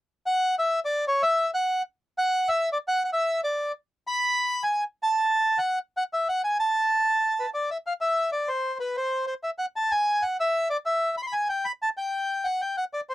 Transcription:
0.26 F#5
0.59 E5
0.85 D5
1.08 C#5
1.22 E5
1.54 F#5
2.18 F#5
2.48 E5
2.73 D5
2.88 F#5
3.05 F#5
3.13 E5
3.44 D5
4.07 B5
4.63 G#5
5.03 A5
5.58 F#5
5.97 F#5
6.13 E5
6.29 F#5
6.44 G#5
6.60 A5
7.40 B4
7.54 D5
7.71 E5
7.87 F5
8.01 E5
8.32 D5
8.48 C5
8.80 B4
8.97 C5
9.27 C5
9.43 E5
9.59 F#5
9.76 A5
9.91 G#5
10.22 F#5
10.40 E5
10.70 D5
10.86 E5
11.18 B5
11.23 C6
11.27 B5
11.33 G#5
11.49 G5
11.65 B5
11.82 A5
11.97 G5
12.44 F#5
12.61 G5
12.77 F#5
12.94 D5
13.10 C5

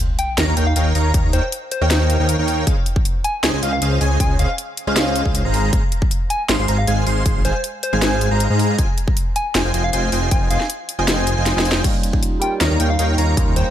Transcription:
Already playing: sub drop
0.19 G5, closed hi-hat
0.38 D#2 D#4 A#4 C#5 F5 A#5, snare, closed hi-hat
0.48 D#2 D#4 A#4 C#5 F5 A#5
0.57 D#2 D#4 A#4 C#5 F5 G5, closed hi-hat
0.67 F5
0.76 D#2 D#4 A#4 C#5 F5 G5, closed hi-hat
0.95 D#2 D#4 A#4 C#5 F5 A#5, open hi-hat
1.14 D#2 D#4 A#4 C#5 F5 A#5, kick, closed hi-hat
1.33 D#2 D#4 A#4 C5 C#5 F5 G5, closed hi-hat
1.43 C5
1.52 closed hi-hat
1.71 C5, closed hi-hat
1.81 D#2 D#4 A#4 C#5 F5 G5
1.91 C5, snare, closed hi-hat
2.10 closed hi-hat
2.20 D#2 D#4 A#4 C#5 F5 G5
2.29 closed hi-hat
2.39 D#2 D#4 A#4 C#5 F5 G5
2.48 open hi-hat
2.67 C#2 C#4 G#4 C5 D#5 F5, kick, closed hi-hat
2.86 closed hi-hat
2.96 kick
3.05 closed hi-hat
3.24 G#5, closed hi-hat
3.43 C#2 C#4 G#4 C5 D#5 G#5, snare, closed hi-hat
3.53 C#2 C#4 G#4 C5 D#5 G#5
3.63 C#2 C#4 G#4 C5 D#5 F5, closed hi-hat
3.73 F5
3.82 C#2 C#4 G#4 C5 D#5 F5, closed hi-hat
4.01 C#2 C#4 G#4 C5 D#5 G#5, open hi-hat
4.20 C#2 C#4 G#4 C5 D#5 G#5, kick, closed hi-hat
4.39 C#2 C#4 G#4 C5 D#5 F5, closed hi-hat
4.49 F5
4.58 closed hi-hat
4.77 closed hi-hat
4.87 C#2 C#4 G#4 C5 D#5 F5
4.96 snare, closed hi-hat
5.16 closed hi-hat
5.26 C#2 C#4 G#4 C5 D#5 F5, kick
5.35 closed hi-hat
5.45 G#1 G#3 G#4 C5 F5 A#5
5.54 open hi-hat
5.73 G#1 G#3 G#4 C5 F5 A#5, kick, closed hi-hat
5.92 closed hi-hat
6.02 kick
6.11 closed hi-hat
6.30 G#5, closed hi-hat
6.49 G#1 G#3 G#4 C5 F5 C6, snare, closed hi-hat
6.59 G#1 G#3 G#4 C5 F5 C6
6.68 G#1 G#3 G#4 C5 F5 A#5, closed hi-hat
6.78 F5
6.87 G#1 G#3 G#4 C5 F5 G#5, closed hi-hat
7.07 G#1 G#3 G#4 C5 F5 C6, open hi-hat
7.26 G#1 G#3 G#4 C5 F5 C6, kick, closed hi-hat
7.45 G#1 G#3 G#4 C5 F5 G#5, closed hi-hat
7.55 C5
7.64 closed hi-hat
7.83 C5, closed hi-hat
7.93 G#1 G#3 G#4 C5 F5 G#5
8.02 C5, snare, closed hi-hat
8.21 closed hi-hat
8.31 G#1 G#3 G#4 C5 F5 A#5
8.40 closed hi-hat
8.50 G#2 G#3 G#4 C5 F5 A#5
8.59 open hi-hat
8.78 F1 F4 C5 D#5 G5 G#5, kick, closed hi-hat
8.98 closed hi-hat
9.08 kick
9.17 closed hi-hat
9.36 G#5, closed hi-hat
9.55 F1 F4 C5 D#5 G5 G#5, snare, closed hi-hat
9.65 F1 F4 C5 D#5 G5 G#5
9.74 F1 F4 C5 D#5 G5 G#5, closed hi-hat
9.84 F5
9.93 F1 F4 C5 D#5 F5 G5 G#5, closed hi-hat
10.12 F1 F4 C5 D#5 G5 G#5, open hi-hat
10.31 F1 F4 C5 D#5 G5 G#5, kick, closed hi-hat
10.50 F1 F4 C5 D#5 F5 G5 G#5, closed hi-hat
10.60 snare
10.70 closed hi-hat
10.89 closed hi-hat
10.99 F1 F4 C5 D#5 G5 G#5
11.08 snare, closed hi-hat
11.27 closed hi-hat
11.37 F1 F4 C5 D#5 G5 G#5
11.46 snare, closed hi-hat
11.56 F1 F4 C5 D#5 G5 G#5, snare
11.65 open hi-hat
11.72 snare
11.82 D#2 G3 A#3 C#4 D#4 F4 A#4 C#5 F5 G5, kick, closed hi-hat, crash
12.03 closed hi-hat
12.13 kick
12.23 closed hi-hat
12.40 G3 A#3 C#4 D#4 G5, closed hi-hat
12.44 F4
12.61 D#2 D#4 A#4 C#5 F5 A#5, snare, closed hi-hat
12.71 D#2 D#4 A#4 C#5 F5 A#5
12.80 D#2 D#4 A#4 C#5 F5 G5, closed hi-hat
12.90 F5
12.99 D#2 D#4 A#4 C#5 F5 G5, closed hi-hat
13.18 D#2 D#4 A#4 C#5 F5 A#5, open hi-hat
13.35 D#2 G3 A#3 C#4 D#4 F4 A#4 C#5 F5 A#5, kick, closed hi-hat
13.56 D#2 D#4 A#4 C5 C#5 F5 G5, closed hi-hat
13.66 C5

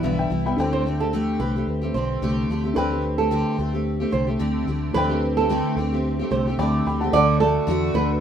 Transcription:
Already playing: E4 B4 D5 G5
0.03 B1 G2 D3 E3 G3 B3 E4 E5
0.19 E5 G5
0.30 C2 E3 G3 B3 E4
0.45 E3 G3 B3 E4 G5 B5
0.56 D2 D3 A3 C4 D4 G4 A4 C5 G5
0.73 C5
0.85 D3 A3 C4 G4
1.00 A3 C4 G4 A4
1.13 D3 A3 C4 G4
1.40 C2 D3 A3 C4 G4 B4
1.56 A3 C4 G4
1.67 D2
1.82 A3 C4 G4
1.94 B1 D3 A3 C4 G4 C5
2.22 C2 D3 A3 C4 G4
2.49 D2 D3 A3 C4 G4
2.64 A3 C4 G4
2.74 D2 D3 A3 D4 A4 B4 C5 G5
2.78 C4 G4
2.91 A3 C4 G4
3.18 A3 C4 G4 A4
3.31 D3 A3 C4 G4
3.58 D2 D3 A3 C4 G4
3.73 A3 C4 G4
4.00 A3 C4 G4
4.11 C2 D3 A3 C4 G4 C5
4.27 A3 C4 G4
4.39 D2 D3 A3 C4 G4
4.67 D2 D3 A3 C4 G4
4.94 D2 D3 A3 C4 D4 G4 A4 B4 C5 G5
5.09 A3 C4 G4
5.37 A3 C4 G4 A4
5.49 D3 A3 C4 G4
5.76 D2 D3 A3 C4 G4
5.92 A3 C4 G4
6.19 A3 C4 G4
6.31 C2 D3 A3 C4 G4 C5
6.47 A3 C4 G4
6.58 D2 D3 A3 C4 G4 D5 G5 B5 D6
6.86 D2 D3 A3 C4 G4 G5 B5
7.00 A3 C4 G4 F#5 A5
7.11 D2 D3 A3 D4 F#4 A4 D5
7.15 F#5
7.40 D3 A3 D4 F#4 A4
7.67 E2 D3 A3 D4 F#4
7.94 D2 D3 A3 D4 F#4 B4

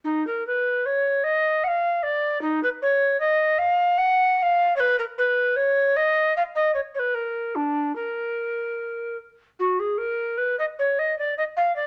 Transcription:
0.04 D#4
0.27 A#4
0.47 B4
0.86 C#5
1.24 D#5
1.64 F5 F#5
2.03 D5
2.41 D#4
2.63 B4
2.82 C#5
3.20 D#5
3.58 F5
3.98 F#5
4.38 F#5
4.42 F5
4.76 B4 C#5
4.99 A#4
5.18 B4
5.56 C#5
5.96 D#5
6.37 F5
6.55 D#5
6.74 C#5
6.95 C#5
6.99 B4
7.14 A#4
7.55 D4
7.96 A#4
9.59 F#4
9.79 G#4
9.98 A#4
10.38 B4
10.59 D#5
10.79 C#5
10.99 D#5
11.18 D5
11.37 D#5
11.57 F5
11.76 D5

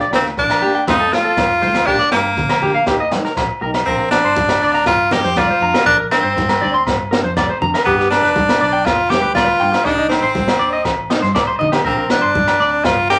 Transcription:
Already playing: A#1
0.00 D5, snare
0.11 D2 A#3 D4 G4, snare, low agogo
0.15 C4
0.25 snare
0.37 A#1 D4, kick, snare
0.50 A#4, snare, low agogo
0.62 A#3 D4 G4, muted conga
0.75 G5
0.87 F1 F3 A3 C4 D#4 F4, kick, snare, muted conga, high conga, low agogo
1.00 A4
1.12 A3 C4 F4, snare, muted conga
1.24 A4
1.37 kick, snare, high conga, low agogo
1.50 F1
1.62 C2 A3 C4 F4 C5, snare, high conga
1.74 D2, snare, low agogo
1.87 A#1 F3 A#3 D4 G4, muted nylon-string guitar stroke, kick, muted conga
1.99 D5, snare
2.11 G1 A#3 D4 G4, snare, low agogo
2.17 A#3
2.37 A#1, kick, snare, low conga
2.49 A#4, snare, low agogo
2.62 D4 G4, muted conga, low conga
2.66 A#3
2.75 F5
2.86 D#2 A#3 D#4 G4, kick, snare, muted conga, low agogo
3.00 D#5
3.11 G4, snare, muted conga, high conga
3.17 D#4
3.25 A#4, snare
3.37 A#1, kick, snare, low agogo
3.61 B1 D#4 G4 A#4
3.74 snare, low agogo
3.86 A#1 F3 C4 D4 A#4, kick, muted conga
4.00 A#4
4.11 C4 D4, snare, muted conga, low agogo
4.24 G1 C5
4.36 kick, snare, high conga
4.49 snare, low agogo
4.62 D2 C4 D4 D5
4.74 A#5, snare
4.86 G1 F4, kick, snare, muted conga, low agogo
5.11 C4 D4 G4 A#4, snare, high conga
5.23 F2 C5, snare
5.36 F4 D5, kick, snare, high conga, low agogo
5.50 C5
5.61 F2 C4 D4 A#5, muted conga
5.74 A#4, snare, low agogo
5.86 A#1 D4 A#4, kick, muted conga
5.98 A#4
6.11 C4 D4, snare, muted conga, low agogo
6.23 G1 C5
6.36 kick, snare, high conga
6.49 snare, low agogo
6.61 D2 C4 D4 D5, high conga
6.74 C6
6.87 G1, kick, snare, muted conga, low agogo
7.11 C4 D4 A#4, snare
7.24 F2 C5
7.37 D5, kick, snare, high conga, low agogo
7.50 C5
7.61 F2 C4 D4 A#5, muted conga, low conga
7.74 A#4, snare, low agogo
7.85 G1 G3 B3 D4 G4, kick, muted conga
7.99 G4, snare
8.10 B3 D4, snare, muted conga, low agogo
8.23 F1 B4, snare
8.36 kick, snare, high conga
8.49 snare, low agogo
8.60 B1 B3 D4 D5
8.73 G5
8.86 F1 F4, kick, snare, muted conga, low agogo
9.10 B3 D4 G4, snare, high conga
9.22 D2 B4
9.35 F4 D5, kick, snare, high conga, low agogo
9.47 B4
9.60 G2 B3 D4 G5, muted conga
9.72 muted clean electric guitar stroke, snare, low agogo
9.85 C2 G3 D4 D#4, kick, snare, muted conga
9.98 D#4
10.08 C4 D4 D#4, snare, muted conga, low agogo
10.22 A1 C5
10.35 kick, snare, high conga
10.48 snare, low agogo
10.58 D#2 D4 D5, muted nylon-string guitar stroke
10.73 D#5
10.85 A1, kick, snare, muted conga, low agogo
11.09 D4 D#4, snare
11.22 G2 C5, snare
11.35 C2 D5, kick, snare, high conga, low agogo
11.47 C5
11.59 A#1 D4 D#4 D#5, muted conga, low conga
11.72 G4, snare, low agogo
11.85 A#1 F3 C4 D4 A#4, kick, muted conga
11.97 A#4
12.10 D4, snare, muted conga, low agogo
12.22 G1 C5
12.35 kick, high conga
12.47 snare, low agogo
12.59 D2 C4 D4 D5
12.84 G1 F4, kick, snare, muted conga, low agogo
13.10 C4 D4 G4 A#4, snare

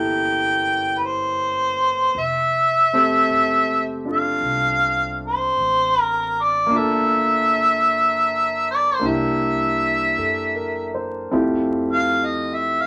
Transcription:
Already playing: G1 E3 A#3 C#4 E4 G4 A4 G5
0.99 B4
1.05 C5
2.15 F1
2.19 E5
2.93 A3 C4 G4
3.29 F#1
4.05 D4 F4 A4
4.11 F5
4.41 C2
5.27 C5
5.57 A1
6.01 A#4
6.42 D5
6.66 A#3 D4
6.70 G1 F4
6.77 A4 E5
8.71 D5
8.95 C5
8.99 C2 A#3 D4 E4
9.04 G4 E5
10.17 F#2 A4
10.55 A#4
10.94 C5
11.31 F2 A3 C4 E4 F4 G4
11.93 F5
12.25 D#5
12.54 E5
12.81 F5

